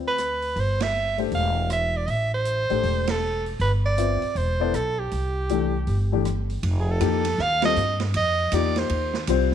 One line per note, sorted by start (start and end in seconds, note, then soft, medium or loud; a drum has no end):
0.00 0.52 D2 medium
0.00 0.16 C4 medium
0.00 0.16 F4 medium
0.00 0.16 B4 medium
0.00 0.16 D5 medium
0.08 0.62 B4 medium
0.18 cross-stick medium
0.18 closed hi-hat soft
0.42 open hi-hat soft
0.56 1.28 G1 medium
0.56 open hi-hat soft
0.60 0.84 C5 medium
0.80 1.20 E5 loud
0.80 snare medium
0.80 ride medium
1.18 1.67 A3 medium
1.18 1.67 D4 soft
1.18 1.68 G4 soft
1.18 1.68 C5 medium
1.18 open hi-hat soft
1.31 2.04 E1 medium
1.31 1.69 F5 medium
1.31 open hi-hat soft
1.70 1.98 E5 medium
1.70 cross-stick medium
1.70 closed hi-hat soft
1.97 2.08 D5 medium
2.07 2.66 A1 medium
2.07 2.12 D#5 medium
2.07 2.33 E5 medium
2.07 open hi-hat soft
2.34 3.12 C5 medium
2.45 closed hi-hat soft
2.70 2.83 A1 medium
2.70 3.19 A3 medium
2.70 3.19 D4 soft
2.70 3.19 G4 medium
2.70 3.20 C5 medium
2.70 open hi-hat soft
2.83 3.56 E1 medium
2.83 open hi-hat soft
3.07 3.47 A4 medium
3.07 snare medium
3.07 ride medium
3.46 open hi-hat soft
3.59 4.18 G1 medium
3.59 3.72 B4 medium
3.59 open hi-hat soft
3.86 4.39 D5 medium
3.97 4.19 C4 medium
3.97 4.19 F4 medium
3.97 4.20 B4 soft
3.97 4.20 E5 medium
3.97 closed hi-hat soft
4.22 muted upright bass stroke soft
4.22 open hi-hat soft
4.35 4.71 E1 medium
4.35 4.77 C5 medium
4.35 open hi-hat soft
4.60 4.72 B3 medium
4.60 4.72 E4 medium
4.60 4.73 A4 medium
4.60 4.73 D5 medium
4.73 5.09 B1 medium
4.73 5.01 A4 medium
4.73 cross-stick medium
4.73 closed hi-hat soft
5.00 6.26 G4 medium
5.11 5.84 C2 medium
5.11 open hi-hat soft
5.49 5.71 E3 medium
5.49 5.71 A3 medium
5.49 5.72 D4 medium
5.49 5.72 G4 medium
5.49 closed hi-hat soft
5.87 6.59 G1 medium
5.87 open hi-hat soft
6.12 6.24 E3 medium
6.12 6.24 A3 medium
6.12 6.25 D4 medium
6.12 6.25 G4 medium
6.25 cross-stick medium
6.25 closed hi-hat soft
6.49 open hi-hat soft
6.63 7.00 F1 medium
6.63 ride medium
6.80 6.93 G#4 medium
6.91 7.43 A4 medium
7.00 7.38 F2 loud
7.00 7.22 F3 medium
7.00 7.22 A#3 medium
7.00 7.23 D#4 medium
7.00 7.23 G4 medium
7.00 hi-hat pedal medium
7.00 ride medium
7.25 snare soft
7.25 ride medium
7.38 7.75 D#2 medium
7.38 7.64 F5 loud
7.38 snare soft
7.62 7.75 G3 medium
7.62 7.75 C4 medium
7.62 7.75 F4 medium
7.62 7.76 A4 medium
7.62 7.99 D#5 loud
7.62 snare medium
7.62 ride medium
7.76 8.13 G2 medium
7.76 hi-hat pedal medium
8.00 snare soft
8.00 ride soft
8.14 8.51 F2 medium
8.14 8.56 D#5 loud
8.14 ride medium
8.52 8.89 E2 medium
8.52 9.10 A#3 medium
8.52 9.10 D#4 medium
8.52 9.09 F4 medium
8.52 9.10 G4 medium
8.52 8.80 D5 medium
8.52 hi-hat pedal medium
8.52 ride medium
8.76 9.29 C5 medium
8.76 snare soft
8.76 ride soft
8.89 9.27 D#2 medium
8.89 ride medium
9.14 snare medium
9.27 9.54 C2 medium
9.27 9.50 G3 medium
9.27 9.50 C4 medium
9.27 9.50 F4 medium
9.27 9.51 C5 medium
9.27 hi-hat pedal medium
9.27 ride medium